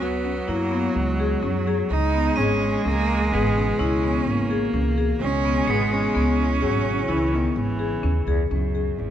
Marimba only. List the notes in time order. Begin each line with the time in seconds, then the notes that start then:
0.00 F#4
0.24 C#4
0.48 E4
0.72 B3
1.20 G#4
1.43 C#4
1.67 G#4
2.14 B3
2.38 G#4
2.85 C#4
3.33 G#4
3.57 C#4
3.79 E4
4.03 B3
4.51 G#4
4.74 C#4
4.98 G#4
5.45 B3
5.68 G#4
6.15 B3
6.61 G#4
6.85 C#4
7.08 E4
7.32 B3
7.79 G#4
8.03 C#4
8.28 G#4
8.51 C#4
8.75 G#4